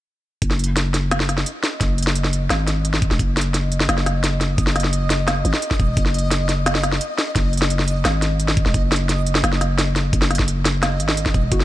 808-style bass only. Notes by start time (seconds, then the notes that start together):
0.42 F#1
1.81 F#1
2.50 G#1
3.11 E1
3.19 F#1
3.89 F#1
4.58 F#1
5.45 G#1
5.80 E1
5.97 F#1
7.36 F#1
8.05 G#1
8.66 E1
8.74 F#1
9.44 F#1
10.13 F#1
11.00 G#1
11.34 E1
11.52 F#1